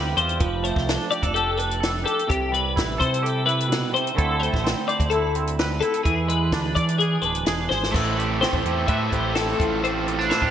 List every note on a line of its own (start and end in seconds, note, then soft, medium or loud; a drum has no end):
0.00 0.15 D2 medium
0.00 0.42 G2 medium
0.00 0.63 G3 medium
0.00 0.89 C4 medium
0.00 0.17 F4 medium
0.00 1.11 G4 medium
0.00 0.17 B4 medium
0.17 0.38 E2 medium
0.17 0.39 F4 medium
0.17 0.40 C5 medium
0.17 closed hi-hat medium
0.29 closed hi-hat medium
0.40 0.71 F1 medium
0.40 2.26 F3 medium
0.40 0.64 B4 medium
0.40 kick loud
0.40 closed hi-hat medium
0.63 2.52 A3 medium
0.63 1.10 C5 medium
0.63 closed hi-hat medium
0.76 0.96 C2 medium
0.76 kick medium
0.76 snare soft
0.89 1.57 D4 medium
0.89 snare medium
0.89 closed hi-hat medium
1.11 1.22 G4 medium
1.11 1.34 D5 medium
1.11 closed hi-hat medium
1.22 2.04 F1 medium
1.22 1.79 A4 soft
1.22 kick medium
1.22 closed hi-hat medium
1.34 2.03 G4 medium
1.34 1.57 A4 medium
1.34 closed hi-hat medium
1.57 2.26 D4 medium
1.57 2.05 B4 medium
1.57 closed hi-hat medium
1.71 closed hi-hat medium
1.80 2.55 A4 medium
1.80 snare loud
1.80 closed hi-hat medium
2.04 2.25 G4 medium
2.04 2.29 A4 medium
2.04 closed hi-hat medium
2.19 closed hi-hat medium
2.28 2.77 C2 medium
2.28 3.91 C3 medium
2.28 2.53 G4 medium
2.28 kick loud
2.28 closed hi-hat medium
2.52 4.16 G3 medium
2.52 2.99 B4 medium
2.52 closed hi-hat medium
2.76 2.97 A1 medium
2.76 3.45 E4 medium
2.76 kick medium
2.76 snare medium
2.76 closed hi-hat medium
2.98 3.81 C3 medium
2.98 4.13 A4 medium
2.98 3.23 C5 medium
2.98 kick medium
2.98 closed hi-hat medium
3.14 closed hi-hat medium
3.22 4.14 G4 medium
3.22 3.45 A4 medium
3.22 closed hi-hat medium
3.46 4.16 E4 medium
3.46 3.93 B4 medium
3.46 closed hi-hat medium
3.60 closed hi-hat medium
3.68 3.93 B2 medium
3.68 closed hi-hat medium
3.72 snare loud
3.92 4.14 C3 medium
3.92 4.16 C5 medium
3.92 closed hi-hat medium
4.07 closed hi-hat medium
4.15 4.48 D2 medium
4.15 6.01 D3 medium
4.15 4.38 A3 medium
4.15 4.63 C4 medium
4.15 5.12 E4 medium
4.15 4.40 A4 medium
4.15 4.88 A4 medium
4.15 kick loud
4.15 closed hi-hat medium
4.39 6.02 A3 medium
4.39 4.87 C5 medium
4.39 closed hi-hat medium
4.53 4.73 A1 medium
4.53 kick medium
4.53 snare soft
4.64 5.34 C4 medium
4.64 snare medium
4.64 closed hi-hat medium
4.88 5.58 C5 medium
4.88 5.11 D5 medium
4.88 closed hi-hat medium
5.00 5.80 D2 medium
5.00 kick medium
5.00 closed hi-hat medium
5.10 5.82 E4 medium
5.10 5.34 A4 medium
5.10 closed hi-hat medium
5.35 6.06 C4 medium
5.35 closed hi-hat medium
5.47 closed hi-hat medium
5.59 6.03 B4 medium
5.59 snare loud
5.59 closed hi-hat medium
5.81 7.00 E4 medium
5.81 6.03 A4 medium
5.81 closed hi-hat medium
5.94 closed hi-hat medium
6.03 6.52 E2 medium
6.03 7.90 E3 medium
6.03 6.28 G#4 medium
6.03 kick medium
6.03 closed hi-hat medium
6.28 7.90 G#3 medium
6.28 6.75 B4 medium
6.28 closed hi-hat medium
6.52 6.72 D2 medium
6.52 7.23 D4 medium
6.52 kick medium
6.52 snare loud
6.52 closed hi-hat medium
6.75 7.16 E3 medium
6.75 6.98 D5 medium
6.75 7.46 D5 medium
6.75 kick medium
6.75 closed hi-hat medium
6.89 closed hi-hat medium
6.98 7.22 G#4 medium
6.98 7.46 G#4 medium
6.98 closed hi-hat medium
7.22 7.44 D1 medium
7.22 7.91 D4 medium
7.22 7.69 B4 medium
7.22 closed hi-hat medium
7.35 closed hi-hat medium
7.46 7.67 E1 medium
7.46 7.69 G#4 medium
7.46 snare loud
7.46 closed hi-hat medium
7.69 7.92 G#1 medium
7.69 7.91 G#4 medium
7.69 7.94 C5 medium
7.69 snare medium
7.83 snare medium
7.92 8.44 A1 medium
7.92 9.60 A2 medium
7.92 8.40 A3 medium
7.92 8.20 C4 medium
7.92 8.18 E4 medium
7.92 8.16 A4 medium
7.92 8.41 B4 medium
7.92 kick medium
7.92 crash medium
8.17 8.41 C4 soft
8.17 8.41 E4 medium
8.17 8.65 G4 medium
8.17 8.43 A4 medium
8.17 closed hi-hat medium
8.41 8.67 A3 medium
8.41 8.67 C4 medium
8.41 10.07 C4 medium
8.41 8.64 E4 medium
8.41 8.65 A4 medium
8.41 8.87 C5 medium
8.41 snare medium
8.41 closed hi-hat medium
8.53 8.63 A1 medium
8.53 kick medium
8.65 8.85 E2 medium
8.65 8.87 A3 medium
8.65 8.88 C4 medium
8.65 8.89 E4 medium
8.65 9.12 G4 medium
8.65 8.91 A4 medium
8.65 closed hi-hat medium
8.87 9.08 A2 medium
8.87 9.33 A3 medium
8.87 9.13 C4 medium
8.87 9.11 E4 medium
8.87 9.56 B4 soft
8.87 9.12 E5 medium
8.87 kick loud
8.87 closed hi-hat medium
8.91 9.09 A4 medium
9.10 9.53 A1 medium
9.10 9.34 C4 medium
9.10 9.35 E4 medium
9.10 9.63 G4 medium
9.10 9.36 A4 medium
9.10 9.35 C5 medium
9.10 kick medium
9.10 closed hi-hat medium
9.33 9.61 A3 medium
9.33 9.88 A3 medium
9.33 9.60 C4 medium
9.33 9.58 E4 medium
9.33 9.82 A4 medium
9.33 9.58 A4 medium
9.33 snare medium
9.33 closed hi-hat medium
9.58 10.31 A1 medium
9.58 10.51 A2 medium
9.58 9.81 A3 medium
9.58 9.83 C4 medium
9.58 9.83 F4 medium
9.58 9.84 A4 medium
9.58 kick medium
9.58 closed hi-hat medium
9.82 10.29 A3 medium
9.82 10.09 C4 medium
9.82 10.07 F4 medium
9.82 10.29 G4 medium
9.82 10.07 A4 medium
9.82 10.07 C5 medium
9.82 closed hi-hat medium
10.07 10.19 C4 medium
10.07 10.30 C4 medium
10.07 10.31 F4 medium
10.07 10.32 A4 medium
10.07 10.30 B4 medium
10.07 closed hi-hat medium
10.19 10.51 D4 soft
10.19 snare soft
10.30 10.51 A3 medium
10.30 10.51 C4 medium
10.30 10.42 E4 medium
10.30 10.51 F4 medium
10.30 10.51 A4 medium
10.30 10.51 C5 medium
10.30 snare medium
10.30 closed hi-hat medium
10.42 10.51 A2 medium
10.42 10.51 G4 soft
10.42 kick medium